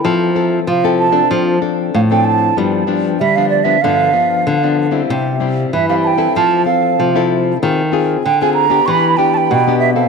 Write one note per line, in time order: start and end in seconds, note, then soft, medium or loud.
0.04 0.65 F3 medium
0.04 0.31 C4 soft
0.04 0.31 E4 medium
0.04 0.32 A4 medium
0.35 0.65 C4 medium
0.35 0.66 E4 medium
0.35 0.66 A4 medium
0.67 1.28 C3 medium
0.67 1.21 F3 medium
0.67 0.87 F5 medium
0.84 1.10 C4 medium
0.84 1.11 E4 medium
0.84 1.11 A4 medium
0.84 0.98 G5 medium
0.99 1.28 A5 medium
1.12 1.56 C4 medium
1.12 1.56 D4 medium
1.12 1.56 A4 medium
1.30 1.91 F3 medium
1.61 2.04 C4 medium
1.61 2.05 D4 soft
1.61 2.05 A4 medium
1.94 2.48 A2 medium
1.94 2.54 F3 soft
1.94 2.01 F5 medium
2.11 2.53 C4 medium
2.11 2.53 D4 medium
2.11 2.53 A4 medium
2.11 2.26 G5 medium
2.25 2.57 A5 medium
2.57 3.17 G2 medium
2.57 2.84 F3 medium
2.57 3.11 G3 medium
2.57 2.84 B3 soft
2.57 2.84 D4 medium
2.87 3.18 F3 medium
2.87 3.18 B3 soft
2.87 3.18 D4 medium
3.20 3.80 D3 medium
3.20 3.75 G3 medium
3.20 3.37 E5 medium
3.36 3.63 F3 medium
3.36 3.64 B3 medium
3.36 3.64 D4 medium
3.36 3.49 F5 medium
3.49 3.66 D5 medium
3.64 3.77 F3 medium
3.64 3.77 B3 medium
3.64 3.78 D4 medium
3.64 3.83 E5 medium
3.82 4.44 G2 medium
3.82 4.11 D3 medium
3.82 4.10 F3 soft
3.82 4.10 B3 soft
3.82 4.10 D4 medium
3.82 4.77 F5 medium
4.13 4.56 F3 medium
4.13 4.57 B3 soft
4.13 4.57 D4 medium
4.47 5.07 D3 medium
4.63 4.89 F3 medium
4.63 4.90 B3 medium
4.63 4.90 D4 medium
4.91 5.35 G3 medium
4.91 5.35 C4 medium
4.91 5.35 E4 medium
5.10 5.70 C3 medium
5.40 5.71 G3 soft
5.40 5.71 C4 medium
5.40 5.71 E4 medium
5.73 6.33 G2 medium
5.73 6.27 E3 medium
5.73 5.88 E5 medium
5.89 6.16 G3 medium
5.89 6.16 C4 medium
5.89 6.16 E4 medium
5.89 5.95 F5 medium
6.04 6.33 G5 medium
6.04 6.08 A5 medium
6.18 6.61 C4 medium
6.18 6.61 E4 medium
6.18 6.62 A4 medium
6.36 6.96 F3 medium
6.36 6.65 A5 loud
6.66 7.09 C4 medium
6.66 7.09 A4 medium
6.66 7.26 F5 medium
6.99 7.59 C3 medium
6.99 7.53 F3 medium
7.15 7.57 C4 medium
7.15 7.57 E4 medium
7.15 7.58 A4 medium
7.62 8.22 D#3 medium
7.62 7.81 C4 medium
7.62 7.81 F4 medium
7.62 7.81 G#4 medium
7.92 8.22 C4 medium
7.92 8.23 F4 soft
7.92 8.23 G#4 soft
8.24 8.79 D3 medium
8.24 8.39 G5 medium
8.42 8.68 C4 medium
8.42 8.68 F4 medium
8.42 8.68 G#4 medium
8.42 8.53 G#5 medium
8.54 8.88 A#5 medium
8.70 9.13 B3 medium
8.70 9.14 D4 medium
8.70 9.14 G4 medium
8.86 9.48 E3 medium
8.86 8.91 C#6 medium
8.90 9.19 B5 loud
9.17 9.61 B3 medium
9.17 9.61 D4 medium
9.17 9.61 G4 medium
9.17 9.35 G5 loud
9.34 9.52 G5 loud
9.34 9.38 A5 medium
9.51 10.08 B2 medium
9.51 9.55 F#5 medium
9.51 9.79 G5 loud
9.67 9.94 B3 medium
9.67 9.94 D4 medium
9.67 9.94 G4 medium
9.79 9.93 E5 medium
9.94 10.08 C4 medium
9.94 10.08 A4 medium
9.94 10.08 F5 medium